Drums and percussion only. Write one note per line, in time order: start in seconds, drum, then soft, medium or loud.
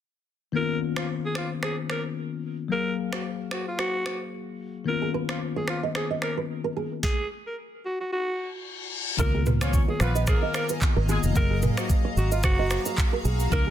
0.96 finger snap medium
0.96 cross-stick medium
1.35 finger snap medium
1.35 cross-stick medium
1.63 finger snap medium
1.63 cross-stick medium
1.90 finger snap medium
1.90 cross-stick medium
3.13 finger snap medium
3.13 cross-stick medium
3.51 finger snap medium
3.51 cross-stick medium
3.79 finger snap medium
3.79 cross-stick medium
4.06 finger snap medium
4.06 cross-stick medium
5.29 finger snap medium
5.29 cross-stick medium
5.68 finger snap medium
5.68 cross-stick medium
5.95 finger snap medium
5.95 cross-stick loud
6.22 finger snap medium
6.22 cross-stick medium
7.03 kick loud
7.03 snare medium
9.19 kick loud
9.19 shaker medium
9.46 mid tom medium
9.46 shaker soft
9.61 finger snap medium
9.61 cross-stick loud
9.61 shaker medium
9.73 kick medium
9.73 shaker medium
10.00 finger snap medium
10.00 cross-stick medium
10.00 shaker medium
10.15 shaker medium
10.27 finger snap medium
10.27 kick loud
10.27 cross-stick loud
10.27 shaker medium
10.54 finger snap medium
10.54 cross-stick medium
10.54 shaker medium
10.69 shaker medium
10.82 kick medium
10.82 clap medium
10.82 shaker medium
11.09 shaker medium
11.23 shaker medium
11.35 kick loud
11.35 shaker medium
11.62 mid tom medium
11.62 shaker soft
11.77 finger snap medium
11.77 cross-stick loud
11.77 shaker medium
11.89 kick loud
11.89 shaker medium
12.17 shaker medium
12.32 shaker medium
12.43 finger snap medium
12.43 kick loud
12.43 cross-stick loud
12.43 shaker medium
12.70 finger snap medium
12.70 cross-stick medium
12.70 shaker medium
12.86 shaker medium
12.98 kick medium
12.98 clap medium
12.98 shaker medium
13.25 shaker medium
13.40 shaker medium
13.52 kick loud
13.52 shaker medium